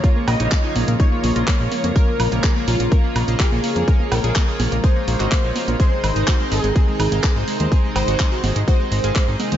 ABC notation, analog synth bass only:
X:1
M:4/4
L:1/16
Q:1/4=125
K:Bbm
V:1 name="Analog synth bass" clef=bass
z2 B,,, B,,, z2 B,,, B,,, z2 B,,, B,,, z B,,, z F,, | z2 B,,, B,,, z2 B,,, B,,, z2 B,,, B,,, z B,,, z F,, | z2 B,,, B,,, z2 B,,, B,,, z2 B,,, A,,, z B,,, z B,,, | z2 A,,, A,,, z2 A,,, A,,, z2 A,,, A,,, z A,,, z E,, |
z2 A,,, A,,, z2 A,,, A,,, z2 A,,, A,,, z A,,, z E,, |]